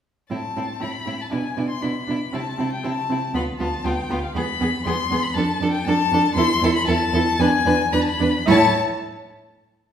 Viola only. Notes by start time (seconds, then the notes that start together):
0.30 C4
0.56 C4
0.80 C4
1.05 C4
1.30 D4
1.57 D4
1.81 D4
2.07 D4
2.33 C4
2.58 C4
2.84 C4
3.10 C4
3.34 B3
3.60 B3
3.85 B3
4.10 B3
4.36 B3
4.60 B3
4.86 B3
5.11 B3
5.36 D4
5.61 D4
5.87 D4
6.13 D4
6.37 E4
6.64 E4
6.89 E4
7.14 E4
7.40 D4
7.66 D4
7.93 D4
8.20 D4
8.46 E4